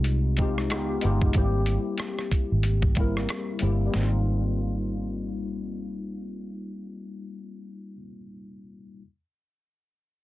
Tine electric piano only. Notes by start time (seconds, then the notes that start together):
Already playing: G#3 C4 D#4 F4 G4
0.37 G#3 C4 D#4 F4
0.42 G4
0.70 G#3 B3 D#4 F4
0.74 G4
1.02 G#3 B3 D#4 F4
1.06 G4
1.33 G3 A#3 C4 E4
1.38 G4
2.96 G3 A#3 C4 E4
3.00 A#4
3.60 G3 A#3 C4 E4 G4
3.86 G3
3.91 A#3
3.95 C4
3.99 D#4 F4